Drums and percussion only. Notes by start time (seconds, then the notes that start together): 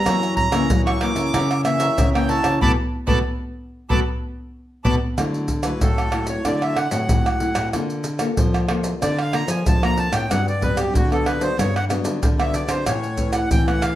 0.06 pandeiro, tamborim, maracas, surdo
0.23 pandeiro, maracas
0.37 pandeiro, surdo
0.52 pandeiro, tamborim, maracas
0.70 pandeiro, maracas, surdo
0.87 pandeiro, tamborim, maracas
1.01 pandeiro, tamborim
1.16 pandeiro, maracas
1.34 pandeiro, tamborim, maracas, surdo
1.51 pandeiro, tamborim, maracas
1.65 pandeiro, tamborim, maracas
1.80 pandeiro, maracas
1.98 pandeiro, maracas, surdo
2.15 pandeiro, tamborim, maracas
2.29 pandeiro
2.44 pandeiro, tamborim, maracas
2.62 surdo
3.08 surdo
3.90 surdo
4.85 surdo
5.18 pandeiro, tamborim, maracas, surdo
5.34 pandeiro, maracas
5.48 pandeiro, maracas, surdo
5.63 pandeiro, tamborim, maracas
5.81 pandeiro, maracas, surdo
5.98 pandeiro, tamborim, maracas
6.12 pandeiro, tamborim
6.27 pandeiro, maracas
6.45 pandeiro, tamborim, maracas, surdo
6.62 pandeiro, tamborim, maracas
6.76 pandeiro, tamborim
6.91 pandeiro, maracas
7.09 pandeiro, maracas, surdo
7.26 pandeiro, tamborim, maracas
7.40 pandeiro
7.55 pandeiro, tamborim, maracas
7.73 pandeiro, tamborim, maracas, surdo
7.90 pandeiro, maracas
8.04 pandeiro, maracas
8.19 pandeiro, tamborim, maracas
8.37 pandeiro, maracas, surdo
8.54 pandeiro, tamborim, maracas
8.69 pandeiro, tamborim
8.84 pandeiro, maracas
9.02 pandeiro, tamborim, maracas, surdo
9.18 pandeiro, tamborim, maracas
9.33 pandeiro, tamborim
9.48 pandeiro, maracas
9.66 pandeiro, maracas, surdo
9.83 pandeiro, tamborim, maracas
9.98 pandeiro
10.13 pandeiro, tamborim, maracas
10.31 pandeiro, tamborim, maracas, surdo
10.48 pandeiro, maracas
10.62 pandeiro, surdo
10.77 pandeiro, tamborim, maracas
10.95 pandeiro, maracas, surdo
11.12 pandeiro, tamborim, maracas
11.26 pandeiro, tamborim
11.41 pandeiro, maracas
11.59 pandeiro, tamborim, maracas, surdo
11.76 pandeiro, tamborim, maracas
11.90 pandeiro, tamborim, maracas
12.05 pandeiro, maracas
12.23 pandeiro, maracas, surdo
12.40 pandeiro, tamborim, maracas
12.54 pandeiro, maracas
12.69 pandeiro, tamborim, maracas
12.86 pandeiro, tamborim, maracas, surdo
13.04 pandeiro, maracas
13.17 pandeiro, maracas, surdo
13.33 pandeiro, tamborim, maracas
13.51 pandeiro, maracas, surdo
13.68 pandeiro, tamborim, maracas
13.82 pandeiro, tamborim, maracas